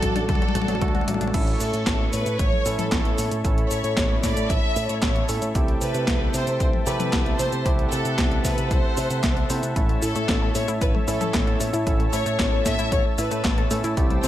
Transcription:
Already playing: A3 D4 F#4 A4 D5 A5
0.02 A1 F#3, kick, closed hi-hat, mid tom
0.16 A1 D4, closed hi-hat, mid tom
0.29 D2 A4, kick, closed hi-hat, mid tom
0.35 mid tom
0.42 F#3, closed hi-hat, mid tom
0.49 mid tom
0.55 A1 F#4, closed hi-hat, mid tom
0.62 mid tom
0.68 A1 F#3, closed hi-hat, mid tom
0.75 mid tom
0.81 D2 A3 D4 F#4 A4, kick, closed hi-hat, mid tom
0.88 mid tom
0.95 F#4, closed hi-hat, mid tom
1.01 mid tom
1.08 A1 F#3, closed hi-hat, mid tom
1.14 mid tom
1.21 A1 D4, closed hi-hat, mid tom
1.28 mid tom
1.34 A1 A3 C#4 E4 A4 C#5 E5 C#6, kick, closed hi-hat, crash, cabasa
1.47 closed hi-hat
1.60 A2 A4, open hi-hat, cabasa
1.74 A2, closed hi-hat, cabasa
1.87 A1, kick, snare, clap, closed hi-hat, cabasa
2.13 A2 B4, open hi-hat, cabasa
2.26 A2, closed hi-hat, cabasa
2.39 A1 C#5, kick, closed hi-hat, cabasa
2.53 high tom
2.66 A2 A3 C#4 E4 A4, open hi-hat, cabasa
2.79 A2 A4, closed hi-hat, high tom, cabasa
2.92 A1 A4, kick, snare, clap, closed hi-hat, cabasa
3.05 closed hi-hat
3.18 A2, open hi-hat, cabasa
3.31 A2, closed hi-hat, cabasa
3.45 A1 A3 C#4 E4 A4 B5, kick, closed hi-hat, cabasa
3.58 closed hi-hat
3.71 A2 C#5, open hi-hat, cabasa
3.84 A2, closed hi-hat, cabasa
3.97 A1, kick, snare, clap, closed hi-hat, cabasa
4.23 A2 D5, kick, snare, open hi-hat, cabasa
4.37 A2, closed hi-hat, cabasa
4.50 A1 E5, kick, closed hi-hat, cabasa
4.76 A2, open hi-hat, cabasa
4.89 A2 C#5, closed hi-hat, cabasa
5.02 A1 C#5, kick, snare, clap, closed hi-hat, cabasa
5.16 closed hi-hat
5.29 A2 A3 C#4 E4 A4, open hi-hat, cabasa
5.42 A2, closed hi-hat, cabasa
5.55 C2 A3 C4 E4 G4 G5 A5, kick, closed hi-hat, cabasa
5.68 closed hi-hat
5.81 C3 B4, open hi-hat, cabasa
5.95 C3, closed hi-hat, cabasa
6.08 C2, kick, snare, clap, closed hi-hat, cabasa
6.34 C3 C5, open hi-hat, cabasa
6.47 C3, closed hi-hat, cabasa
6.60 C2, kick, closed hi-hat, cabasa
6.73 high tom
6.87 C3 A3 C4 E4 G4 B4, open hi-hat, cabasa
7.00 C3, closed hi-hat, high tom, cabasa
7.13 C2, kick, snare, clap, closed hi-hat, cabasa
7.26 closed hi-hat
7.39 C3 C5, open hi-hat, cabasa
7.52 C3, closed hi-hat, cabasa
7.65 C2 A3 C4 E4 G4 F#5, kick, closed hi-hat, cabasa
7.79 closed hi-hat
7.92 C3 A4, open hi-hat, cabasa
8.05 C3, closed hi-hat, cabasa
8.18 C2, kick, snare, clap, closed hi-hat, cabasa
8.31 closed hi-hat
8.44 C3 B4, kick, snare, open hi-hat, cabasa
8.58 C3, closed hi-hat, cabasa
8.71 C2 C5, kick, closed hi-hat, cabasa
8.97 C3, open hi-hat, cabasa
9.10 C3, closed hi-hat, cabasa
9.23 C2, kick, snare, clap, closed hi-hat, cabasa
9.37 closed hi-hat
9.50 C3 A3 C4 E4 C5, open hi-hat, cabasa
9.63 C3, closed hi-hat, cabasa
9.76 A1 A3 C#4 E4 A4 C#5 A5 E6, kick, closed hi-hat, cabasa
9.89 A3, closed hi-hat
10.02 A2 E4 A4, open hi-hat, cabasa
10.16 A2 A3, closed hi-hat, cabasa
10.29 A1, kick, snare, clap, closed hi-hat, cabasa
10.42 A4
10.55 A2 A3 C#5, open hi-hat, cabasa
10.68 A2 E4, closed hi-hat, cabasa
10.81 A1 B4, kick, closed hi-hat, cabasa
10.95 A3, high tom
11.08 A2 A3 C#4 E4 A4, open hi-hat, cabasa
11.21 A2 A3, closed hi-hat, high tom, cabasa
11.34 A1, kick, snare, clap, closed hi-hat, cabasa
11.47 A4, closed hi-hat
11.60 A2 A3, open hi-hat, cabasa
11.73 A2 E4, closed hi-hat, cabasa
11.87 A1 A3 C#4 E4 A4, kick, closed hi-hat, cabasa
12.00 A3, closed hi-hat
12.13 A2 E4 C#5, open hi-hat, cabasa
12.26 A2 A3, closed hi-hat, cabasa
12.39 A1, kick, snare, clap, closed hi-hat, cabasa
12.52 A4
12.65 A2 A3 E5, kick, snare, open hi-hat, cabasa
12.79 A2 E4, closed hi-hat, cabasa
12.92 A1 C#5, kick, closed hi-hat, cabasa
13.05 A3
13.18 A2 E4 B4, open hi-hat, cabasa
13.31 A2 A3, closed hi-hat, cabasa
13.45 A1, kick, snare, clap, closed hi-hat, cabasa
13.58 A4, closed hi-hat
13.71 A2 A3 C#4 E4 A4, open hi-hat, cabasa
13.84 A2 E4, closed hi-hat, cabasa
13.97 C2 A3 C4 E4 G4 C5 G5, kick, closed hi-hat, cabasa
14.10 G3, closed hi-hat
14.23 C3 C4 A4, open hi-hat, cabasa

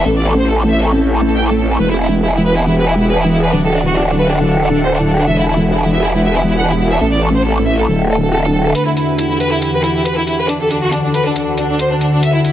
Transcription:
0.05 A1 A3 C4 E4 A4
0.17 D5
0.27 A4
0.39 C5
0.49 A4
0.60 A4
0.71 E5
0.82 A4
0.92 A4
1.14 A4
1.26 A4
1.36 G5
1.47 A4
1.58 A4
1.69 A4
1.79 E1 E3 B3 F#4 G4 B4
1.91 E4
2.01 E4
2.23 E4
2.34 E4
2.45 B4
2.56 E4
2.66 E4
2.78 B4
2.88 E4
2.99 E4
3.10 B4
3.21 E4
3.31 E4
3.43 B4
3.53 D1 D3 D4 A4
3.65 A4
3.75 D4
3.86 F#4
3.97 D4
4.08 D4
4.18 B4
4.30 D4
4.40 D4
4.62 D4
4.73 D4
4.84 C5
4.95 D4
5.05 D4
5.17 D4
5.27 E1 E3 B3 F#4 G4 E5
5.39 E4
5.49 E4
5.71 E4
5.82 E4
5.92 E5
6.04 E4
6.14 E4
6.26 E5
6.36 E4
6.47 E4
6.57 F#5
6.69 E4
6.79 E4
6.91 E5
7.01 A1 A3 C4 E4 A4
7.12 D5
7.23 A4
7.34 C5
7.44 A4
7.56 A4
7.66 E5
7.78 A4
7.88 D1 D3 D4 F#4 A4
8.10 A4
8.21 A4
8.31 A4
8.43 A4
8.53 A4
8.65 A4
8.75 E2 E3 F#4 G4 B4, closed hi-hat
8.86 E4
8.97 E4, closed hi-hat
9.18 E4, closed hi-hat
9.30 E4
9.40 B4, closed hi-hat
9.52 E4
9.62 E4, closed hi-hat
9.73 B4
9.84 E4, closed hi-hat
9.95 E4
10.05 B4, closed hi-hat
10.17 E4
10.27 E4, closed hi-hat
10.39 B4
10.49 D2 D3 D4 F#4 A4, closed hi-hat
10.60 A4
10.71 D4, closed hi-hat
10.82 F#4
10.92 D4, closed hi-hat
11.04 D4
11.14 B4, closed hi-hat
11.26 D4
11.36 D4, closed hi-hat
11.58 D4, closed hi-hat
11.69 D4
11.79 C5, closed hi-hat
11.91 D4
12.01 D4, closed hi-hat
12.12 D4
12.23 E2 E3 G4 E5, closed hi-hat
12.34 E4
12.44 E4, closed hi-hat

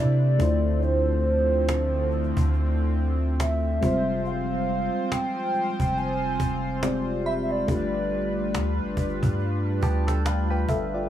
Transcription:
Already playing: C3 A3 D4 E4 G4 C5 D5 G6
0.38 D2 D3 F3 A3 C4 D4 E4 F4, cajon bass
0.43 C5
0.83 C5, cajon slap
1.69 cajon slap
2.11 cajon slap
2.24 cajon slap
2.37 D2, cajon bass
2.54 cajon slap
3.40 E5, cajon slap
3.81 F1 F3 G3 G#3 C4 F4 C5, cajon bass
3.85 C5
4.25 F5, cajon slap
5.12 G5, cajon slap
5.54 cajon slap
5.66 cajon slap
5.80 F1, cajon bass
5.97 G#5, cajon slap
6.40 F1, cajon bass
6.82 G#3 C4 F4 G4 D5, cajon slap
7.26 E5 B5
7.43 E5
7.51 D5
7.67 G1 G3 A3 D4 F4 G4 B4, cajon bass
7.71 B4
8.54 D2, cajon slap
8.79 G1
8.97 G1, cajon bass
9.10 cajon slap
9.23 G2, cajon bass
9.40 cajon slap
9.83 D2 B3 G4 A5, cajon bass
10.07 A4 G5, cajon slap
10.25 D4 B4 F5 A5, cajon slap
10.50 D4 B4 G5
10.69 G1 A4 E5 F5, cajon bass
10.94 F4 D5

